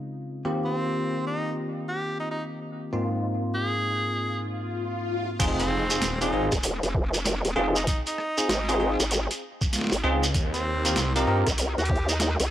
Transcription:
Already playing: tine electric piano C#3 G#3 C4 D#4 F4
0.45 tine electric piano D#3 A#3 C4 F4 G4
0.65 tenor saxophone C4
1.27 tenor saxophone D#4
1.89 tenor saxophone G4
2.20 tenor saxophone D#4
2.31 tenor saxophone D#4
2.93 tine electric piano G#2 A#3 C4 D#4 F4
3.54 tenor saxophone G#4
4.16 swell
5.40 detuned saw bass F1, tine electric piano C4 D#4 F4 G#4, kick, closed hi-hat, crash, impact, shekere
5.60 tenor saxophone C4, closed hi-hat, shekere
5.71 cross-stick
5.90 tine electric piano C4 D#4 F4 G#4, closed hi-hat, shekere
6.02 detuned saw bass D#1, snare, closed hi-hat, shekere
6.21 tine electric piano C4 D#4 F4 G#4, tenor saxophone D#4, closed hi-hat, shekere
6.33 detuned saw bass G#1, tine electric piano C4 D#4 F4 G#4
6.52 wobble bass D#1, kick, cross-stick, closed hi-hat, shekere
6.63 closed hi-hat, shekere
6.83 wobble bass F1, closed hi-hat, shekere
6.95 kick
7.14 cross-stick, closed hi-hat, shekere
7.25 snare, closed hi-hat, shekere
7.45 wobble bass D#1, closed hi-hat, shekere
7.56 wobble bass F1, tine electric piano C4 D#4 F4 G#4
7.76 tenor saxophone D#4, closed hi-hat, shekere
7.87 tenor saxophone D#4, kick, closed hi-hat, shekere
8.06 tenor saxophone D#4, closed hi-hat, shekere
8.18 cross-stick
8.38 tine electric piano C4 D#4 F4 G#4, closed hi-hat, shekere
8.49 wobble bass G#1, snare, closed hi-hat, shekere
8.69 tine electric piano C4 D#4 F4 G#4, closed hi-hat, shekere
8.80 tine electric piano C4 D#4 F4 G#4
9.00 wobble bass G#1, cross-stick, closed hi-hat, shekere
9.11 closed hi-hat, shekere
9.31 closed hi-hat, shekere
9.61 kick, closed hi-hat, shekere
9.73 snare, closed hi-hat, shekere
9.76 snare
9.79 snare
9.81 snare
9.84 snare
9.87 snare
9.90 wobble bass G#1, snare, closed hi-hat, shekere
10.04 detuned saw bass C#2, tine electric piano C4 D#4 F4 G#4
10.23 closed hi-hat, shekere
10.35 detuned saw bass D#2, kick, closed hi-hat, shekere
10.54 tenor saxophone C4, closed hi-hat, shekere
10.85 tine electric piano C4 F4 G4 A#4, closed hi-hat, shekere
10.96 detuned saw bass C2, snare, closed hi-hat, shekere
11.15 tine electric piano C4 F4 G4 A#4, tenor saxophone D#4, closed hi-hat, shekere
11.27 detuned saw bass G2, tine electric piano C4 F4 G4 A#4
11.47 wobble bass C2, kick, cross-stick, closed hi-hat, shekere
11.58 closed hi-hat, shekere
11.78 wobble bass D#2, tenor saxophone G4, closed hi-hat, shekere
11.85 closed hi-hat
11.90 kick
11.96 closed hi-hat
12.09 tenor saxophone D#4, cross-stick, closed hi-hat, shekere
12.20 tenor saxophone D#4, snare, closed hi-hat, shekere
12.40 wobble bass C2, closed hi-hat, shekere

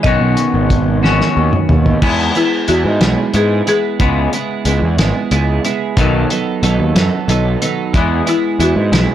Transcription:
0.03 picked electric bass B1, clean electric guitar B2 D#3 B3 C#4 F#4, marimba D#5, kick, closed hi-hat
0.21 picked electric bass B1
0.37 closed hi-hat
0.54 picked electric bass G#1
0.70 kick, closed hi-hat
1.03 clean electric guitar B2 D#3 B3 C#4 F#4, snare
1.21 snare
1.37 picked electric bass D#2
1.53 mid tom
1.69 picked electric bass D#2, mid tom
1.86 floor tom
2.02 picked electric bass E2, clean electric guitar E3 G#3 B3 E4 G#4, kick, crash
2.35 clean electric guitar E3 G#3 B3 E4 G#4, marimba E4, closed hi-hat
2.68 picked electric bass E2, clean electric guitar E3 G#3 B3 E4 G#4, marimba F#4, closed hi-hat
2.85 picked electric bass G#2
3.01 picked electric bass B1, clean electric guitar E3 G#3 B3 E4 G#4, snare, closed hi-hat
3.34 picked electric bass G#2, clean electric guitar E3 G#3 B3 E4 G#4, marimba G#4, closed hi-hat
3.67 clean electric guitar E3 G#3 B3 E4 G#4, marimba G#4, closed hi-hat
4.00 picked electric bass C#2, clean electric guitar C#3 G#3 B3 E4 G#4, kick, closed hi-hat
4.33 clean electric guitar C#3 G#3 B3 E4 G#4, closed hi-hat
4.65 picked electric bass C#2, clean electric guitar C#3 G#3 B3 E4 G#4, closed hi-hat
4.82 picked electric bass E2
4.98 picked electric bass G#1, clean electric guitar C#3 G#3 B3 E4 G#4, snare, closed hi-hat
5.31 picked electric bass C#2, clean electric guitar C#3 G#3 B3 E4 G#4, closed hi-hat
5.65 clean electric guitar C#3 G#3 B3 E4 G#4, closed hi-hat
5.97 picked electric bass B1, clean electric guitar B2 D#3 F#3 B3 D#4 A4, kick, closed hi-hat
6.30 clean electric guitar B2 D#3 F#3 B3 D#4 A4, closed hi-hat
6.63 picked electric bass B1, clean electric guitar B2 D#3 F#3 B3 D#4 A4, closed hi-hat
6.79 picked electric bass D#2
6.95 picked electric bass F#2, clean electric guitar B2 D#3 F#3 B3 D#4 A4, snare, closed hi-hat
7.28 picked electric bass B1, clean electric guitar B2 D#3 F#3 B3 D#4 A4, closed hi-hat
7.62 clean electric guitar B2 D#3 F#3 B3 D#4 A4, closed hi-hat
7.93 picked electric bass E2, clean electric guitar E3 G#3 B3 E4 G#4, kick, closed hi-hat
8.26 clean electric guitar E3 G#3 B3 E4 G#4, marimba E4, closed hi-hat
8.59 picked electric bass E2, clean electric guitar E3 G#3 B3 E4 G#4, marimba F#4, closed hi-hat
8.76 picked electric bass G#2
8.92 picked electric bass B1, clean electric guitar E3 G#3 B3 E4 G#4, snare, closed hi-hat

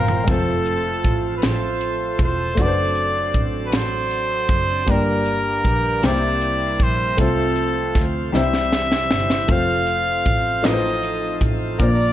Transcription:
Already playing: double bass G1, grand piano F3 C4 F4 C5 F5 G5, tonewheel organ F3 C4 C5, trumpet A#4
0.08 floor tom
0.24 double bass F1, tonewheel organ F3 A3 C4 G#4, grand piano G#3 C4, kick, closed hi-hat
0.29 french horn section F3 A3 C4 F4, grand piano A3 F4 C5, trumpet A4
0.34 tonewheel organ A4
0.66 closed hi-hat
1.04 double bass A1, kick, closed hi-hat
1.37 trumpet B4
1.42 double bass A1, trumpet C5, snare, closed hi-hat
1.81 closed hi-hat
2.19 double bass E1, kick, closed hi-hat
2.23 trumpet C5
2.55 double bass F#1, tonewheel organ F#3 C4 D4 A4, grand piano A3 D4, french horn section D4 F#4, kick, closed hi-hat
2.59 grand piano F#4 B4, trumpet D5
2.68 grand piano C5
2.95 closed hi-hat
3.34 double bass A1, kick, closed hi-hat
3.66 trumpet B4
3.72 double bass A1, trumpet C5, snare, closed hi-hat
4.11 closed hi-hat
4.49 double bass F#1, kick, closed hi-hat
4.86 double bass G1, grand piano G2 A#3 D4 G4 D5, french horn section G3 A#3 D4 G4, tonewheel organ G3 A#3 D4 A#4, kick, closed hi-hat
4.91 trumpet A#4
5.26 closed hi-hat
5.64 double bass A#1, kick, closed hi-hat
6.02 double bass C2, grand piano C3 A#3 D4 G4 C5, tonewheel organ G3 C4 E4 A#4, french horn section G3 C4 E4, trumpet D5, snare, closed hi-hat
6.10 grand piano E4
6.42 closed hi-hat
6.80 double bass A#1, trumpet C5, kick, closed hi-hat
7.17 double bass C2, grand piano C3 A3 C4 F4 C5, french horn section F3 A3 F4, tonewheel organ A3 C4 F4 C5, trumpet A4, kick, closed hi-hat
7.56 closed hi-hat
7.95 double bass D2, kick, snare, closed hi-hat
8.32 double bass C2, grand piano C3 G3 C4 D#4 C5, french horn section E3 G3 E4, tonewheel organ G3 C4 E4 C5, trumpet E5, snare
8.41 grand piano E4
8.53 snare
8.73 snare
8.92 snare
9.11 double bass G1, snare
9.30 snare
9.48 double bass F1, french horn section F3 A3 F4, grand piano A3 C4 F4 C5, tonewheel organ A3 C4 F4 C5, trumpet F5, kick, closed hi-hat
9.87 closed hi-hat
10.26 double bass A1, kick, closed hi-hat
10.63 double bass A1, grand piano A2 A3 D#4 F4 B4, tonewheel organ F3 C4 D#4 A4, french horn section D#4, trumpet D#5, snare, clap, closed hi-hat
10.73 grand piano C5
11.03 closed hi-hat
11.41 double bass A1, kick, closed hi-hat
11.78 double bass A#1, grand piano A#2 A#3 D4 F4 C5, french horn section D3 A#3 D4, tonewheel organ F3 A#3 D4 A#4, trumpet D5, kick, closed hi-hat
11.88 grand piano D5

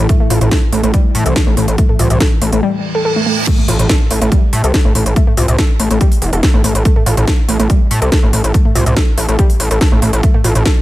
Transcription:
Already playing: ambient pad A2 E3
0.09 synth arpeggio sound A3, kick, closed hi-hat
0.20 synth arpeggio sound A3
0.30 analog synth bass A1, synth arpeggio sound F4, mid tom, open hi-hat
0.41 analog synth bass A1, closed hi-hat, mid tom
0.51 synth arpeggio sound A4, kick, snare, closed hi-hat
0.72 analog synth bass A1, synth arpeggio sound A3, open hi-hat
0.83 analog synth bass A1, synth arpeggio sound A3, closed hi-hat
0.94 synth arpeggio sound G3, kick, closed hi-hat
1.15 analog synth bass A2, open hi-hat
1.26 analog synth bass C2, synth arpeggio sound A4, closed hi-hat
1.36 synth arpeggio sound A4, kick, snare, closed hi-hat
1.47 analog synth bass A1, synth arpeggio sound A3
1.57 analog synth bass A1, synth arpeggio sound A3, mid tom, open hi-hat
1.68 analog synth bass A1, closed hi-hat
1.78 synth arpeggio sound A3, kick, closed hi-hat
1.89 synth arpeggio sound A3, mid tom
1.99 analog synth bass C2, synth arpeggio sound F4, mid tom, open hi-hat
2.10 analog synth bass C2, closed hi-hat, mid tom
2.20 synth arpeggio sound A4, kick, snare, closed hi-hat
2.42 analog synth bass A1, synth arpeggio sound A3, open hi-hat
2.52 analog synth bass A1, synth arpeggio sound A3, closed hi-hat
2.63 synth arpeggio sound G3, reverse cymbal
2.95 synth arpeggio sound A4
3.05 synth arpeggio sound A4
3.16 synth arpeggio sound A3
3.26 synth arpeggio sound A3
3.47 synth arpeggio sound A3, kick, closed hi-hat, crash, impact
3.58 synth arpeggio sound A3, mid tom
3.68 analog synth bass A1, synth arpeggio sound F4, mid tom, open hi-hat
3.79 analog synth bass A1, closed hi-hat, mid tom
3.89 synth arpeggio sound A4, kick, snare, closed hi-hat
4.11 analog synth bass A1, synth arpeggio sound A3, open hi-hat
4.22 analog synth bass A1, synth arpeggio sound A3, closed hi-hat
4.32 synth arpeggio sound G3, kick, closed hi-hat
4.53 analog synth bass A2, open hi-hat
4.64 analog synth bass C2, synth arpeggio sound A4, closed hi-hat
4.74 synth arpeggio sound A4, kick, snare, closed hi-hat
4.85 analog synth bass A1, synth arpeggio sound A3, mid tom
4.95 analog synth bass A1, synth arpeggio sound A3, mid tom, open hi-hat
5.06 analog synth bass A1, closed hi-hat
5.16 synth arpeggio sound A3, kick, closed hi-hat
5.27 synth arpeggio sound A3, mid tom
5.37 analog synth bass C2, synth arpeggio sound F4, mid tom, open hi-hat
5.48 analog synth bass C2, closed hi-hat, mid tom
5.58 synth arpeggio sound A4, kick, snare, closed hi-hat
5.80 analog synth bass A1, synth arpeggio sound A3, open hi-hat
5.91 analog synth bass A1, synth arpeggio sound A3, closed hi-hat
6.01 synth arpeggio sound G3, kick, closed hi-hat
6.12 open hi-hat
6.22 analog synth bass E1, open hi-hat
6.33 analog synth bass E1, synth arpeggio sound A4, closed hi-hat
6.43 synth arpeggio sound A4, kick, snare, closed hi-hat
6.54 analog synth bass A1, synth arpeggio sound A3, mid tom
6.64 analog synth bass A1, synth arpeggio sound A3, mid tom, open hi-hat
6.75 analog synth bass A1, closed hi-hat
6.85 synth arpeggio sound A3, kick, closed hi-hat
6.96 synth arpeggio sound A3, mid tom
7.06 analog synth bass A1, synth arpeggio sound F4, mid tom, open hi-hat
7.17 analog synth bass A1, closed hi-hat, mid tom
7.27 synth arpeggio sound A4, kick, snare, closed hi-hat
7.49 analog synth bass A1, synth arpeggio sound A3, open hi-hat
7.59 analog synth bass A1, synth arpeggio sound A3, closed hi-hat
7.70 synth arpeggio sound G3, kick, closed hi-hat
7.91 analog synth bass A2, open hi-hat
8.02 analog synth bass C2, synth arpeggio sound A4, closed hi-hat
8.12 synth arpeggio sound A4, kick, snare, closed hi-hat
8.23 analog synth bass A1, synth arpeggio sound A3, mid tom
8.33 analog synth bass A1, synth arpeggio sound A3, mid tom, open hi-hat
8.44 analog synth bass A1, closed hi-hat
8.54 synth arpeggio sound A3, kick, closed hi-hat
8.65 synth arpeggio sound A3, mid tom
8.75 analog synth bass C2, synth arpeggio sound F4, mid tom, open hi-hat
8.86 analog synth bass C2, closed hi-hat, mid tom
8.97 synth arpeggio sound A4, kick, snare, closed hi-hat
9.18 analog synth bass A1, synth arpeggio sound A3, open hi-hat
9.29 analog synth bass A1, synth arpeggio sound A3, closed hi-hat
9.39 synth arpeggio sound G3, kick, closed hi-hat
9.50 open hi-hat
9.60 analog synth bass A1, open hi-hat
9.71 analog synth bass A1, synth arpeggio sound A4, closed hi-hat
9.81 synth arpeggio sound A4, kick, snare, closed hi-hat
9.92 analog synth bass A1, synth arpeggio sound A3, mid tom
10.02 analog synth bass A1, synth arpeggio sound A3, mid tom, open hi-hat
10.13 analog synth bass A1, closed hi-hat
10.23 synth arpeggio sound A3, kick, closed hi-hat
10.34 synth arpeggio sound A3, mid tom
10.44 analog synth bass A1, synth arpeggio sound F4, mid tom, open hi-hat
10.55 analog synth bass A1, closed hi-hat, mid tom
10.65 synth arpeggio sound A4, kick, snare, closed hi-hat

